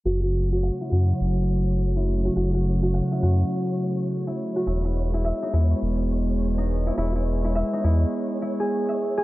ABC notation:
X:1
M:4/4
L:1/16
Q:"Swing 16ths" 1/4=104
K:F#m
V:1 name="Synth texture"
c16- | c16- | c16- | c16 |]
V:2 name="Harp"
F F z F f E F z6 E z F | F F z F f E F z6 E z F | E E z E e ^D E z6 D z E | E E z E e ^D E z3 E G z e z G |]
V:3 name="Analog synth pad" clef=bass
[C,F,A,]16- | [C,F,A,]16 | [G,B,]16- | [G,B,]16 |]
V:4 name="Analog synth bass" clef=bass
F,,,4 z2 F,,2 F,,,8 | F,,,4 z2 F,,2 z8 | E,,,4 z2 E,,2 E,,,8 | E,,,4 z2 E,,2 z8 |]